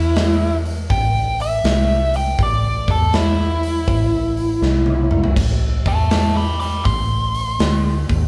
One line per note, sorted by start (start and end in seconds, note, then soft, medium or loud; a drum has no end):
0.00 0.86 E2 loud
0.00 0.56 E4 loud
0.16 snare loud
0.16 open hi-hat medium
0.66 open hi-hat medium
0.90 1.61 A1 loud
0.90 1.39 G5 loud
0.90 kick loud
0.90 open hi-hat medium
1.40 2.13 E5 loud
1.40 open hi-hat medium
1.64 2.35 C2 medium
1.64 snare loud
1.64 open hi-hat medium
2.14 2.39 G5 medium
2.14 open hi-hat medium
2.39 2.85 A1 medium
2.39 2.89 D5 medium
2.39 kick loud
2.39 open hi-hat medium
2.88 3.84 E2 medium
2.88 3.14 A4 loud
2.88 kick loud
2.88 open hi-hat medium
3.13 5.34 E4 medium
3.13 snare loud
3.13 open hi-hat medium
3.63 open hi-hat medium
3.88 4.58 A1 medium
3.88 kick loud
3.88 open hi-hat medium
4.37 open hi-hat medium
4.62 5.33 C2 medium
4.62 snare medium
4.86 high tom medium
5.11 mid tom medium
5.24 floor tom medium
5.36 5.83 A1 medium
5.36 kick loud
5.36 crash loud
5.86 6.82 E2 medium
5.86 6.10 E5 loud
5.86 6.11 A5 loud
5.86 kick loud
5.86 open hi-hat medium
6.11 6.34 E5 medium
6.11 6.36 A5 medium
6.11 snare loud
6.11 open hi-hat medium
6.37 6.59 B5 medium
6.37 6.60 D6 medium
6.60 6.84 B5 medium
6.60 6.86 D6 medium
6.60 open hi-hat medium
6.85 7.57 A1 loud
6.85 8.28 C6 loud
6.85 kick loud
6.85 open hi-hat medium
7.35 open hi-hat medium
7.59 8.06 D2 medium
7.59 snare loud
7.59 open hi-hat medium
8.09 8.28 D#2 loud
8.09 kick loud
8.09 open hi-hat medium